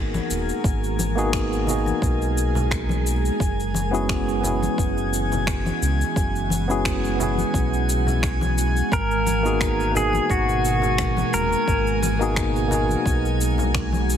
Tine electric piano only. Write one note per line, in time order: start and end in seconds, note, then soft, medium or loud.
0.00 1.16 A#3 medium
0.00 1.16 B3 medium
0.00 1.17 D#4 medium
0.00 1.18 F#4 medium
0.00 1.19 G#4 loud
1.16 1.63 A#3 medium
1.16 1.63 B3 medium
1.16 1.64 D#4 medium
1.16 1.64 F#4 medium
1.16 1.65 G#4 loud
1.64 3.36 A#3 medium
1.64 3.37 B3 medium
1.64 3.38 D#4 medium
1.69 3.39 F#4 medium
1.69 3.40 G#4 medium
3.91 4.39 B3 loud
3.91 4.39 C#4 medium
3.91 4.39 E4 medium
3.91 4.40 F#4 medium
3.91 4.40 G#4 loud
4.41 6.63 B3 medium
4.41 6.64 C#4 medium
4.41 6.65 E4 medium
4.46 6.65 F#4 medium
4.46 6.66 G#4 medium
6.68 7.15 B3 medium
6.68 7.15 C#4 medium
6.68 7.16 E4 medium
6.68 7.16 F#4 medium
6.68 7.17 G#4 loud
7.16 8.88 B3 medium
7.16 8.89 C#4 medium
7.16 8.90 E4 medium
7.21 8.91 F#4 medium
7.21 8.92 G#4 medium
9.43 9.90 A#3 medium
9.43 9.91 B3 medium
9.43 9.91 D#4 medium
9.43 9.92 F#4 medium
9.43 9.92 G#4 loud
9.92 12.14 A#3 medium
9.92 12.15 B3 medium
9.92 12.16 D#4 medium
9.97 12.17 F#4 medium
9.97 12.18 G#4 medium
12.19 12.66 A#3 medium
12.19 12.67 B3 medium
12.19 12.67 D#4 medium
12.19 12.68 F#4 medium
12.19 12.68 G#4 loud
12.68 14.17 A#3 medium
12.68 14.17 B3 medium
12.68 14.17 D#4 medium
12.73 14.17 F#4 medium
12.73 14.17 G#4 medium